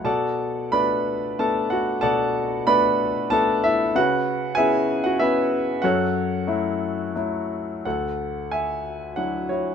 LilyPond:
<<
  \new Staff \with { instrumentName = "Grand piano" } { \time 3/4 \key b \dorian \tempo 4 = 93 << { a''4 b''4 a''8 fis''8 | a''4 b''4 a''8 e''8 | fis''4 gis''8. fis''16 e''4 | fis''2 r4 |
fis''4 gis''4 fis''8 cis''8 | } \\ { <a' d'' fis''>4 <b' d''>4 a'8 fis'8 | <a' d'' fis''>4 <b' d''>4 a'8 e'8 | <fis' b'>4 <gis' e''>8. fis'16 b'4 | <fis' a' cis''>2 r4 |
a'4 e''4. <e' fis'>8 | } >> }
  \new Staff \with { instrumentName = "Grand piano" } { \time 3/4 \key b \dorian b,4 <a b d'>4 <a b d'>4 | b,4 <a b d'>4 <a b d'>4 | cis4 <b cis' e'>4 <b cis' e'>4 | fis,4 <fis a e'>4 <fis a e'>4 |
d,2 <fis d' e'>4 | }
>>